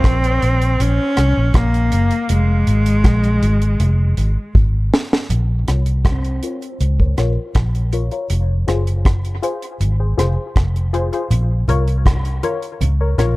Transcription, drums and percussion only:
0.04 kick loud
0.04 cross-stick loud
0.04 closed hi-hat medium
0.24 closed hi-hat soft
0.42 closed hi-hat medium
0.62 closed hi-hat medium
0.80 closed hi-hat medium
1.17 cross-stick medium
1.17 closed hi-hat medium
1.54 kick loud
1.54 cross-stick loud
1.54 closed hi-hat medium
1.74 closed hi-hat soft
1.92 closed hi-hat medium
2.11 closed hi-hat medium
2.29 closed hi-hat loud
2.67 closed hi-hat medium
2.86 closed hi-hat medium
3.04 kick loud
3.04 cross-stick loud
3.04 closed hi-hat medium
3.24 closed hi-hat soft
3.43 closed hi-hat medium
3.62 closed hi-hat medium
3.80 closed hi-hat medium
4.17 closed hi-hat medium
4.55 kick loud
4.94 snare loud
5.13 snare medium
5.30 closed hi-hat loud
5.30 low conga medium
5.68 cross-stick medium
5.68 closed hi-hat medium
5.86 closed hi-hat medium
6.05 kick loud
6.05 cross-stick loud
6.05 closed hi-hat medium
6.24 closed hi-hat soft
6.43 closed hi-hat medium
6.62 closed hi-hat soft
6.81 closed hi-hat medium
7.00 kick medium
7.18 cross-stick medium
7.18 closed hi-hat medium
7.55 kick loud
7.55 cross-stick loud
7.55 closed hi-hat medium
7.75 closed hi-hat soft
7.93 closed hi-hat medium
8.11 closed hi-hat soft
8.30 closed hi-hat loud
8.68 cross-stick medium
8.68 closed hi-hat medium
8.87 closed hi-hat medium
9.05 kick loud
9.05 cross-stick loud
9.05 closed hi-hat medium
9.25 closed hi-hat soft
9.43 closed hi-hat medium
9.62 closed hi-hat soft
9.81 closed hi-hat medium
10.19 cross-stick medium
10.19 closed hi-hat medium
10.56 kick loud
10.56 cross-stick loud
10.56 closed hi-hat medium
10.76 closed hi-hat soft
10.94 closed hi-hat medium
11.13 closed hi-hat soft
11.31 closed hi-hat medium
11.31 low conga medium
11.68 closed hi-hat medium
11.68 low conga medium
11.88 closed hi-hat medium
12.06 kick loud
12.06 cross-stick loud
12.06 closed hi-hat medium
12.25 closed hi-hat soft
12.43 closed hi-hat medium
12.43 high conga soft
12.62 closed hi-hat soft
12.81 closed hi-hat medium
12.81 low conga medium
13.18 cross-stick medium
13.18 closed hi-hat medium
13.18 low conga medium

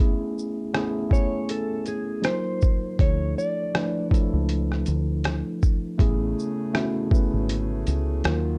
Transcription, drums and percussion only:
0.38 shaker soft
0.74 cross-stick loud
0.74 closed hi-hat medium
1.11 kick medium
1.11 shaker soft
1.49 closed hi-hat medium
1.86 closed hi-hat soft
1.86 shaker soft
2.24 cross-stick medium
2.24 closed hi-hat medium
2.61 kick medium
2.61 shaker soft
2.99 kick loud
2.99 closed hi-hat medium
3.38 shaker soft
3.75 cross-stick loud
3.75 closed hi-hat medium
4.11 kick medium
4.11 closed hi-hat soft
4.11 shaker soft
4.49 closed hi-hat medium
4.72 cross-stick soft
4.86 closed hi-hat soft
4.86 shaker soft
5.24 cross-stick medium
5.24 closed hi-hat medium
5.62 kick medium
5.62 shaker soft
5.99 kick loud
5.99 closed hi-hat medium
6.39 shaker soft
6.75 cross-stick loud
6.75 closed hi-hat medium
7.11 kick medium
7.11 shaker soft
7.49 closed hi-hat medium
7.87 closed hi-hat soft
7.87 shaker soft
8.24 cross-stick loud
8.24 closed hi-hat medium

